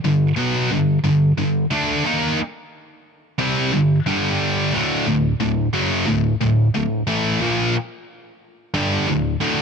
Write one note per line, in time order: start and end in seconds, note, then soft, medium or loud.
0.04 0.31 G2 medium
0.04 0.31 D3 medium
0.36 0.69 B2 loud
0.36 0.70 F#3 medium
0.36 0.70 B3 loud
0.71 0.98 G2 medium
0.71 0.98 D3 medium
1.04 1.31 G2 medium
1.04 1.31 D3 medium
1.38 1.65 G2 medium
1.38 1.65 D3 medium
1.71 2.03 D3 loud
1.71 2.04 A3 medium
1.71 2.04 D4 loud
2.05 2.37 D#3 loud
2.05 2.38 A#3 loud
2.05 2.38 D#4 loud
3.39 3.71 C3 loud
3.39 3.71 G3 loud
3.39 3.72 C4 loud
3.73 3.99 G2 medium
3.73 3.99 D3 medium
4.06 4.72 G2 loud
4.06 4.72 D3 loud
4.06 4.72 G3 loud
4.73 5.05 D2 medium
4.73 5.06 A2 loud
4.73 5.06 D3 loud
5.07 5.33 D2 medium
5.07 5.33 A2 medium
5.40 5.67 D2 medium
5.40 5.67 A2 medium
5.74 6.06 F#2 medium
5.74 6.06 C#3 medium
5.74 6.06 F#3 loud
6.07 6.34 D2 medium
6.07 6.34 A2 medium
6.41 6.67 D2 medium
6.41 6.67 A2 medium
6.74 7.01 D2 medium
6.74 7.01 A2 medium
7.07 7.40 A2 loud
7.07 7.40 E3 loud
7.07 7.40 A3 loud
7.41 7.73 A#2 medium
7.41 7.73 F3 loud
7.41 7.74 A#3 medium
8.74 9.07 G2 medium
8.74 9.07 D3 loud
8.74 9.07 G3 loud
9.08 9.35 D2 medium
9.08 9.35 A2 medium
9.41 9.62 D2 loud
9.41 9.62 A2 loud
9.41 9.62 D3 loud